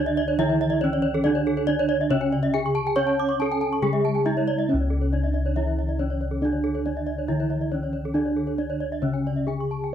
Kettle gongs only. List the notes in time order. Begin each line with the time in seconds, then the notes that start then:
Already playing: C#2
0.38 D3
0.81 D4
1.25 D4
1.68 D4
2.11 C#3
2.54 D4
2.96 C#5
3.40 D4
3.82 C#3
4.26 D4
4.69 C#4
4.74 C#2
5.14 D4
6.00 D4
6.42 D4
6.87 D4
7.29 D3
7.72 D4
8.14 D4
8.58 D4
9.02 C#3
9.47 D4